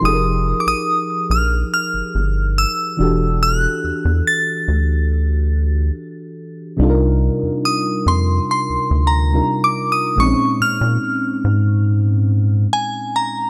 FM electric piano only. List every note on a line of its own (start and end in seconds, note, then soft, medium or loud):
0.01 2.94 F3 medium
0.01 2.95 D#4 medium
0.01 2.95 G4 medium
0.06 2.96 G#4 medium
0.06 0.12 A4 medium
0.14 3.00 A#4 medium
2.97 6.32 E3 medium
2.97 6.33 D4 medium
2.97 6.34 F#4 medium
3.02 6.35 G4 medium
3.02 6.35 A4 medium
6.77 9.28 C3 medium
6.77 9.28 G3 medium
6.77 9.29 D4 medium
6.77 9.30 D#4 medium
6.82 9.30 F4 medium
6.82 6.88 A4 medium
6.90 9.34 A#4 medium
9.33 10.17 C3 soft
9.33 10.18 G3 soft
9.33 10.18 D4 soft
9.33 10.18 D#4 soft
9.33 10.18 F4 soft
9.33 10.19 A#4 medium
10.16 13.50 A#2 medium
10.16 13.50 G#3 medium
10.16 10.21 C4 soft
10.21 13.50 C4 medium
10.21 13.50 D#4 medium
10.26 13.50 C#4 medium